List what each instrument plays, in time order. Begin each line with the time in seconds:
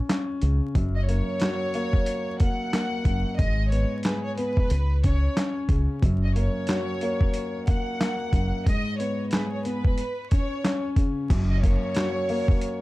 Already playing: grand piano C#4
0.09 grand piano C#4, snare, clap, closed hi-hat
0.42 fingered electric bass C#2, grand piano C#3, closed hi-hat
0.75 fingered electric bass F#1, grand piano F#2, kick, closed hi-hat
0.96 violin section D#5
1.07 grand piano A#3, violin section C#5, closed hi-hat
1.40 grand piano F#4, snare, clap, closed hi-hat
1.74 grand piano A#3, closed hi-hat
1.93 kick
2.06 closed hi-hat
2.40 grand piano A#3, violin section F#5, kick, closed hi-hat
2.73 grand piano A#3, snare, clap, closed hi-hat
3.05 fingered electric bass F#1, grand piano F#2, kick, closed hi-hat
3.39 fingered electric bass G#1, grand piano G#2, violin section D#5, kick, closed hi-hat
3.71 grand piano B3, violin section C#5, closed hi-hat
4.03 grand piano G#4, violin section B4, snare, clap, closed hi-hat
4.25 violin section C#5
4.38 grand piano B3, violin section B4, closed hi-hat
4.57 kick
4.70 fingered electric bass C#2, closed hi-hat
5.04 grand piano C#4, violin section C#5, kick, closed hi-hat
5.37 grand piano C#4, snare, clap, closed hi-hat
5.69 fingered electric bass C#2, grand piano C#3, kick, closed hi-hat
6.02 fingered electric bass F#1, grand piano F#2, kick, closed hi-hat
6.23 violin section D#5
6.35 grand piano A#3, violin section C#5, closed hi-hat
6.67 grand piano F#4, snare, clap, closed hi-hat
7.01 grand piano A#3, closed hi-hat
7.21 kick
7.34 closed hi-hat
7.67 grand piano A#3, violin section F#5, kick, closed hi-hat
8.00 grand piano A#3, snare, clap, closed hi-hat
8.33 fingered electric bass F#1, grand piano F#2, kick, closed hi-hat
8.66 grand piano G#2, violin section D#5, kick, closed hi-hat
9.00 grand piano B3, violin section C#5, closed hi-hat
9.31 grand piano G#4, violin section B4, snare, clap, closed hi-hat
9.51 violin section C#5
9.65 grand piano B3, violin section B4, closed hi-hat
9.85 kick
9.98 closed hi-hat
10.31 grand piano C#4, violin section C#5, kick, closed hi-hat
10.64 grand piano C#4, snare, clap, closed hi-hat
10.96 grand piano C#3, kick, closed hi-hat
11.30 fingered electric bass F#1, grand piano F#2, kick, closed hi-hat, crash
11.50 violin section D#5
11.62 grand piano A#3, violin section C#5, kick, closed hi-hat
11.94 grand piano F#4, snare, clap, closed hi-hat
12.29 grand piano A#3, open hi-hat
12.48 kick
12.61 closed hi-hat